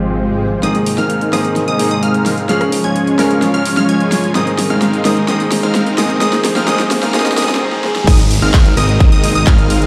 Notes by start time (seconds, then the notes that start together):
Already playing: G#1 G#2 C3 F3 G#3 C4 F4 G4 C5, swell
0.62 G#2 C3 D#3 G#3 A#3 C4 D#4 G#4 A#4 D#6, snare, closed hi-hat, riser
0.75 closed hi-hat
0.86 open hi-hat
0.98 G#3 C4 D#4 A#4 F5 F6, snare, closed hi-hat
1.10 closed hi-hat
1.21 closed hi-hat
1.32 G#2 D#3 G#3 A#3 C4 D#4 G#4 A#4 D#5 D#6, cross-stick, snare, open hi-hat
1.45 closed hi-hat
1.56 snare, closed hi-hat
1.68 G#3 C4 D#4 A#4 D#5 D#6, closed hi-hat
1.78 G#2 D#3 A#3 C4 G#4, open hi-hat
1.91 G#3 C4 D#4 A#4 D#5 D#6, closed hi-hat
2.03 G#3 C4 D#4 A#4 F5 F6, closed hi-hat
2.14 closed hi-hat
2.26 snare, open hi-hat
2.38 closed hi-hat
2.48 F3 G#3 C#4 F4 G#4 C#5 F5 F6, snare, closed hi-hat
2.61 cross-stick, closed hi-hat
2.72 open hi-hat
2.84 G#3 C#4 F4 C#5 G#5 G#6, closed hi-hat
2.96 closed hi-hat
3.07 closed hi-hat
3.18 F3 G#3 C#4 F4 A#4 C#5 F5 F6, cross-stick, snare, open hi-hat
3.31 closed hi-hat
3.42 snare, closed hi-hat
3.54 G#3 C#4 F4 C#5 F5 F6, closed hi-hat
3.65 open hi-hat
3.77 G#3 C#4 F4 C#5 F5 F6, snare, closed hi-hat
3.89 G#3 C#4 F4 C#5 G#5 G#6, closed hi-hat
4.00 closed hi-hat
4.12 snare, open hi-hat
4.24 closed hi-hat
4.34 G#2 D#3 G#3 A#3 C4 D#4 G#4 A#4 C5 D#5 D#6, snare, closed hi-hat
4.47 closed hi-hat
4.59 snare, open hi-hat
4.70 G#3 C4 D#4 A#4 F5 F6, closed hi-hat
4.82 snare, closed hi-hat
4.93 closed hi-hat
5.04 G#2 D#3 G#3 A#3 C4 D#4 G#4 A#4 D#5 D#6, snare, open hi-hat
5.17 closed hi-hat
5.27 G#2 D#3 G#3 A#3 C4 D#4 G#4 A#4 D#5 D#6, snare, closed hi-hat
5.40 closed hi-hat
5.52 snare, open hi-hat
5.63 G#3 C4 D#4 A#4 F5 F6, closed hi-hat
5.75 snare, closed hi-hat
5.87 closed hi-hat
5.97 G#2 D#3 G#3 A#3 C4 D#4 G#4 A#4 D#5 D#6, snare, open hi-hat
6.10 closed hi-hat
6.20 G#2 D#3 F3 G#3 A#3 C4 D#4 G#4 A#4 C5 D#5 G5 D#6, snare, closed hi-hat
6.33 snare, closed hi-hat
6.45 snare, open hi-hat
6.56 G#3 C4 D#4 A#4 F5 F6, snare, closed hi-hat
6.67 G#2 D#3 G#3 A#3 C4 D#4 G#4 A#4 D#5 D#6, snare, closed hi-hat
6.79 snare, closed hi-hat
6.91 snare, open hi-hat
7.03 G#3 C4 D#4 A#4 F5 F6, snare, closed hi-hat
7.13 G#2 D#3 G#3 A#3 C4 D#4 G#4 A#4 D#5 D#6, snare, closed hi-hat, swell
7.20 snare
7.26 snare, closed hi-hat
7.32 snare
7.36 G#2 D#3 G#3 A#3 C4 D#4 G#4 A#4 D#5 D#6, snare, open hi-hat
7.43 snare
7.49 snare, closed hi-hat
7.55 snare
7.60 G#2 D#3 A#3 C4 G#4
7.72 snare
7.83 G#2 D#3 A#3 C4 G#4, snare
7.96 snare
8.07 G#1 C3 D#3 G#3 A#3 C4 D#4 A#4 D#5 D#6, kick, closed hi-hat, crash, ride, downlifter
8.19 closed hi-hat
8.31 open hi-hat, ride
8.42 G#1 G#3 C4 D#4 A#4 F5 F6, closed hi-hat
8.54 kick, clap, closed hi-hat, ride
8.66 closed hi-hat
8.77 G#1 G#3 C4 D#4 A#4 D#5 D#6, cross-stick, open hi-hat, ride
8.89 closed hi-hat
9.00 kick, closed hi-hat, ride
9.12 G#1 G#3 C4 D#4 A#4 D#5 D#6, closed hi-hat
9.24 open hi-hat, ride
9.35 G#1 G#3 C4 D#4 A#4 D#5 D#6, closed hi-hat
9.47 G#1 G#3 C4 D#4 A#4 F5 F6, kick, clap, closed hi-hat, ride
9.58 closed hi-hat
9.70 open hi-hat, ride
9.82 closed hi-hat